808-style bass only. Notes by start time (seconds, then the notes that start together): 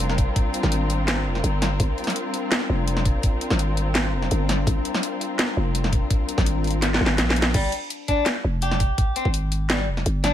Already playing: F1
0.63 G#1
1.26 F1
1.44 G1
1.80 G1
2.69 F1
3.51 G#1
4.13 F1
4.31 G1
4.67 G1
5.57 F1
6.38 G#1
7.01 G#1
7.19 A#1
7.54 G1
8.44 F1
9.25 G#1
9.88 F1
10.06 G1